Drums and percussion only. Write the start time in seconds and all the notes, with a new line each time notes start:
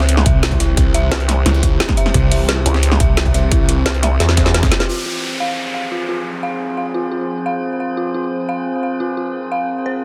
0.00 snare
0.09 closed hi-hat
0.17 snare
0.26 kick, closed hi-hat
0.43 snare, closed hi-hat
0.52 kick, closed hi-hat
0.60 snare, closed hi-hat
0.77 kick, closed hi-hat
0.94 closed hi-hat
1.12 snare, closed hi-hat
1.20 closed hi-hat
1.29 snare, closed hi-hat
1.46 snare, closed hi-hat
1.54 closed hi-hat
1.63 kick, closed hi-hat
1.80 snare, closed hi-hat
1.89 kick, snare
1.97 closed hi-hat
2.06 snare
2.14 kick, closed hi-hat
2.32 closed hi-hat, open hi-hat
2.49 snare, closed hi-hat
2.66 closed hi-hat
2.74 snare
2.83 closed hi-hat
2.92 snare
3.00 kick, closed hi-hat
3.17 snare, closed hi-hat
3.26 kick, closed hi-hat
3.34 snare, closed hi-hat
3.52 kick, closed hi-hat
3.69 closed hi-hat
3.86 snare, closed hi-hat
3.94 closed hi-hat
4.03 snare, closed hi-hat
4.20 snare, closed hi-hat
4.29 snare, closed hi-hat
4.37 kick, snare, closed hi-hat
4.46 snare, closed hi-hat
4.54 snare, closed hi-hat
4.63 kick, snare, closed hi-hat
4.72 snare, closed hi-hat
4.80 snare, closed hi-hat